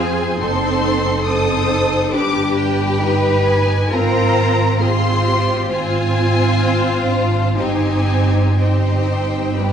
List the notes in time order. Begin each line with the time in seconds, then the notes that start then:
Already playing: F2 C4 F4 G#4 C5 G#5
0.39 F#1 C4 D#4 A4 C5 C6
0.84 A4
1.26 C4 D#4 A4 C5 D#6
2.12 G1 D4 G4 B4 D6
2.56 G5
3.01 D#4 B4
3.44 G#5
3.89 G#1 C4 F4 A#4 C5 A#5
4.79 C4 F4 G#4 C5 C6
5.25 G4
5.69 C4 F4 C5 G#5
6.61 C4
7.07 D4 F5
7.57 G1 C4 D#4 G4 C5 G#5
8.57 C4 D#4 G4 C5 G5
9.56 G3 D4 G4 B4